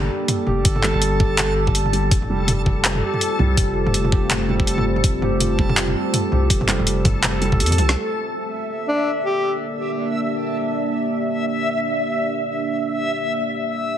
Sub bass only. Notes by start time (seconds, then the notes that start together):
0.47 F1
0.65 G1
0.94 G1
2.12 F1
3.39 C2
3.58 F1
3.87 F1
5.04 F1
6.32 C2
6.50 F1
6.79 F1
7.60 F2
7.79 C2